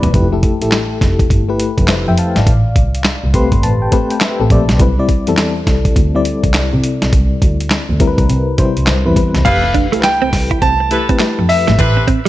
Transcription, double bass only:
0.03 0.12 E1 medium
0.14 0.38 F1 loud
0.61 0.70 A1 medium
1.02 1.30 F1 medium
1.31 1.54 G1 medium
1.78 1.87 F1 medium
2.08 2.16 F2 medium
2.36 2.45 G#1 medium
2.47 2.62 A1 loud
2.76 2.91 C2 medium
3.24 3.32 C2 medium
3.52 3.61 G1 medium
3.63 3.87 A1 medium
4.40 4.49 A1 medium
4.51 4.65 A#1 loud
4.69 4.78 B1 medium
4.80 5.03 C2 loud
5.28 5.36 E2 medium
5.67 5.91 C2 medium
5.96 6.20 D2 loud
6.44 6.53 C2 medium
6.73 6.82 C3 medium
7.03 7.11 B1 medium
7.13 7.28 C2 loud
7.42 7.57 D2 medium
7.89 7.98 D2 medium
8.19 8.27 C2 medium
8.29 8.44 C3 medium
8.59 8.73 C3 medium
8.77 8.86 C2 medium
8.88 9.02 C2 medium
9.06 9.15 E2 medium
9.35 9.44 C2 medium
9.46 9.70 F1 loud
9.93 10.01 C2 soft
10.23 10.31 C2 soft
10.33 10.57 C2 medium
10.62 10.86 C2 medium
11.39 11.48 F2 loud
11.68 11.77 G#1 medium
11.79 12.03 A1 loud

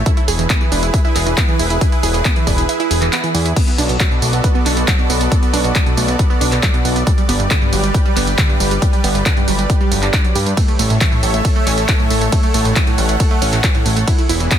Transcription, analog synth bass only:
0.28 0.47 E1 loud
0.72 0.90 E1 loud
1.16 1.34 E1 medium
1.59 1.78 E1 medium
2.03 2.22 E1 loud
2.47 2.66 E1 loud
2.91 3.09 E1 medium
3.35 3.53 E2 loud
3.78 3.97 B1 loud
4.22 4.41 B1 loud
4.66 4.85 B1 medium
5.10 5.28 B1 medium
5.54 5.72 B1 loud
5.97 6.16 B1 loud
6.41 6.60 B1 medium
6.85 7.04 B1 medium
7.29 7.47 G1 loud
7.73 7.91 G1 loud
8.16 8.35 G1 medium
8.60 8.79 G1 medium
9.04 9.22 G1 loud
9.48 9.66 G1 loud
9.92 10.10 G1 medium
10.35 10.54 G2 loud
10.79 10.98 A1 loud
11.23 11.42 A1 loud
11.67 11.85 A1 medium
12.11 12.29 A1 medium
12.54 12.73 A1 loud
12.98 13.17 A1 loud
13.42 13.60 A1 medium
13.86 14.04 A1 medium
14.30 14.48 E1 loud

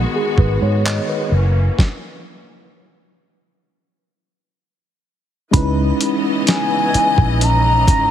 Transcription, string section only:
0.00 1.28 D#3 medium
0.00 1.28 G#3 medium
0.00 1.28 B3 medium
0.00 1.75 F#4 medium
1.31 1.78 E3 medium
1.31 1.78 A#3 medium
1.31 1.78 C#4 medium
5.53 8.11 C#3 medium
5.53 8.11 E3 medium
5.53 7.39 B3 medium
5.53 8.11 D#5 medium
7.41 8.11 C#4 medium

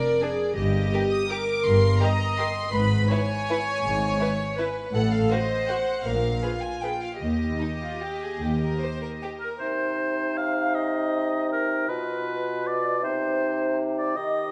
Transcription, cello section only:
0.57 0.87 G2 medium
1.65 1.95 G2 medium
2.73 3.04 G#2 medium
3.84 4.14 G#2 medium
4.94 5.24 A2 medium
6.06 6.36 A#2 medium
7.21 7.54 D#2 soft
8.41 8.73 D#2 soft

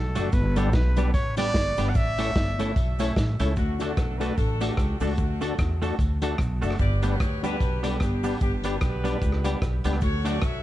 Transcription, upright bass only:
0.00 0.12 B1 medium
0.16 0.31 F#1 medium
0.33 0.73 G1 loud
0.73 1.08 B1 loud
1.14 1.49 A1 loud
1.54 1.74 G1 loud
1.78 1.95 G1 loud
1.95 2.30 A1 loud
2.35 2.70 G1 medium
2.76 3.10 B1 loud
3.16 3.36 A1 medium
3.40 3.54 C#2 medium
3.57 3.91 D2 loud
3.97 4.31 B1 medium
4.38 4.72 A1 medium
4.77 4.97 C#2 medium
5.00 5.15 C#2 medium
5.18 5.53 D2 loud
5.59 5.93 E2 loud
5.99 6.33 D2 medium
6.39 6.59 B1 medium
6.62 6.77 F#1 medium
6.79 7.14 G1 loud
7.20 7.54 D2 medium
7.60 7.95 B1 medium
8.01 8.35 G1 medium
8.41 8.75 G1 loud
8.82 9.16 B1 medium
9.22 9.56 C#2 medium
9.61 9.81 B1 medium
9.84 10.00 C#2 medium
10.02 10.37 D2 loud
10.42 10.63 B1 medium

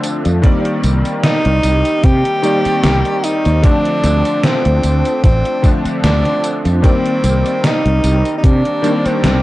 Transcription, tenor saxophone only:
1.24 2.06 D#4 loud
2.04 3.26 G4 loud
3.24 3.65 D#4 loud
3.64 4.46 D4 loud
4.44 5.23 C4 loud
5.24 5.74 C4 loud
6.04 6.61 D4 loud
6.84 7.66 C4 loud
7.64 8.37 D#4 loud
8.38 8.46 D#4 medium
8.44 9.07 D4 loud
9.06 9.43 C4 medium

